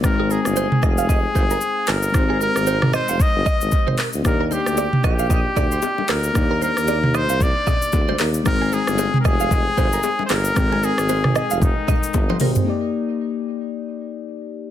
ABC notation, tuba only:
X:1
M:4/4
L:1/16
Q:"Swing 16ths" 1/4=114
K:Eb
V:1 name="Tuba" clef=bass
A,,,3 G,,,2 z F,,,4 G,,,2 z2 G,,,2 | A,,,3 A,,,4 F,,, z G,,, z A,,, z A,,, z D,, | E,,3 D,,2 z B,,,4 D,,2 z2 D,,2 | E,,3 E,,4 C,,2 z3 D,,2 E,,2 |
A,,,3 G,,,2 z F,,,4 G,,,2 z2 G,,,2 | A,,,3 A,,,4 F,,,2 z3 G,,,2 A,,,2 | z16 |]